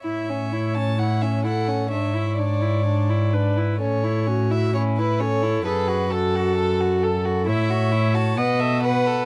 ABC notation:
X:1
M:4/4
L:1/8
Q:1/4=129
K:A
V:1 name="Violin"
e3 a f e f2 | e2 d4- d z | c3 e c B c2 | B2 A4- A z |
[K:F#dor] e3 a f e f2 |]
V:2 name="Viola"
c6 A2 | c6 B2 | A2 F2 E2 A2 | G2 F4 A2 |
[K:F#dor] c4 d2 B2 |]
V:3 name="Violin"
E C E C E C E C | D E D E D E D E | C E C E C E C E | A F A F A F A F |
[K:F#dor] E F E F B A B A |]
V:4 name="Cello" clef=bass
A,,8 | G,,8 | A,,8 | F,,8 |
[K:F#dor] A,,4 B,,4 |]